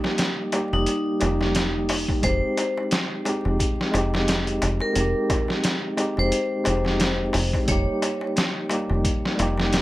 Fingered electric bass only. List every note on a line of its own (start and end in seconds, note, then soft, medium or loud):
0.73 0.85 F1 medium
1.22 2.05 F1 medium
2.24 2.40 F1 medium
3.45 3.58 F1 medium
3.94 4.59 F1 medium
4.62 4.79 F1 medium
4.96 5.13 F1 medium
6.18 6.31 F1 medium
6.67 7.32 F1 medium
7.34 7.51 F1 medium
7.68 7.85 F1 medium
8.90 9.03 F1 medium
9.39 9.82 F1 medium